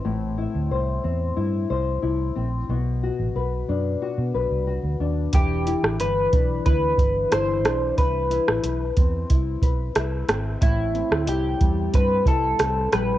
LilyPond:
<<
  \new Staff \with { instrumentName = "Clean electric guitar" } { \time 4/4 \key a \dorian \tempo 4 = 91 r1 | r1 | g'4 b'4 b'4 c''4 | b'4. r2 r8 |
e'4 g'4 b'8 a'4 b'8 | }
  \new Staff \with { instrumentName = "Nylon-string guitar" } { \time 4/4 \key a \dorian a,8 e'8 c''8 c'8 e'8 c''8 e'8 c'8 | b,8 fis'8 b'8 d'8 fis'8 b'8 fis'8 d'8 | e8 e'8 b'8 d'8 e'4 e'8 d'8 | r8 e'8 b'8 c'8 e'8 b'8 e'8 c'8 |
a,8 c'8 e'8 g8 c'8 e'8 c'8 g8 | }
  \new Staff \with { instrumentName = "Fingered electric bass" } { \clef bass \time 4/4 \key a \dorian a,,8. d,16 c,8 e,8 g,8 c,8 c,8 ais,,8 | b,,8. a,,16 b,,8 fis,8 r16 b,16 b,,16 c,8 d,16 dis,8 | e,,8. a,,16 g,,8 b,,8 d,8 g,,8 g,,8 b,,8 | c,8. a,,16 b,,8 e,8 c,8 b,,8 c,8 gis,,8 |
a,,8. d,16 c,8 e,8 g,8 c,8 c,8 ais,,8 | }
  \new DrumStaff \with { instrumentName = "Drums" } \drummode { \time 4/4 r4 r4 r4 r4 | r4 r4 r4 r4 | <hh bd>8 hh16 ss16 hh8 <hh bd>8 <hh bd>8 <hh bd>8 <hh ss>8 <hh ss>8 | <hh bd>8 hh16 ss16 hh8 <hh bd>8 <hh bd>8 <hh bd>8 <hh ss>8 <hh ss>8 |
<hh bd>8 hh16 ss16 hh8 <hh bd>8 <hh bd>8 <hh bd>8 <hh ss>8 <hh ss>8 | }
>>